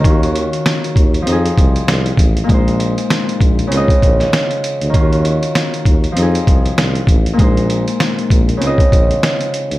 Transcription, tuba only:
X:1
M:4/4
L:1/16
Q:"Swing 16ths" 1/4=98
K:Ebdor
V:1 name="Tuba" clef=bass
E,,4 z2 E,,2 F,,2 C,,2 C,,2 =A,,,2 | B,,,4 z2 B,,,2 D,,2 B,,,2 z3 =D,, | E,,4 z2 E,,2 F,,2 C,,2 C,,2 =A,,,2 | B,,,4 z2 B,,,2 D,,2 B,,,2 z3 =D,, |]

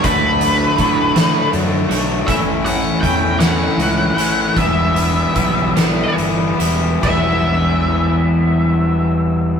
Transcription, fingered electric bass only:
X:1
M:6/8
L:1/8
Q:3/8=51
K:Edor
V:1 name="Fingered electric bass" clef=bass
D,,2 A,,2 F,, B,,, | A,,,2 E,,2 C,, A,,, | E,,,2 B,,,2 G,,, E,,, | E,,,6 |]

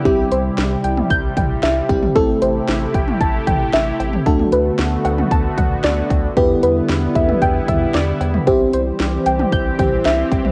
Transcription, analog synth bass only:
X:1
M:4/4
L:1/8
Q:1/4=114
K:Clyd
V:1 name="Analog synth bass" clef=bass
C,, C,, C,, C,, C,, C,, C,, C,, | A,,, A,,, A,,, A,,, A,,, A,,, A,,, A,,, | D,, D,, D,, D,, D,, D,, D,, D,, | E,, E,, E,, E,, E,, E,, E,, E,, |
C,, C,, C,, C,, C,, C,, C,, C,, |]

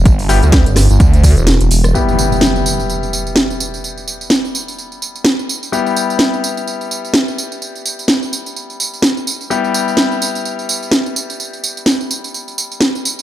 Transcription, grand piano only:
X:1
M:4/4
L:1/8
Q:"Swing 16ths" 1/4=127
K:Em
V:1 name="Grand piano"
z [G,B,EG] z6 | [G,B,EG]8- | [G,B,EG]8 | [G,B,EG]8- |
[G,B,EG]8 | [G,B,EG]8- | [G,B,EG]8 |]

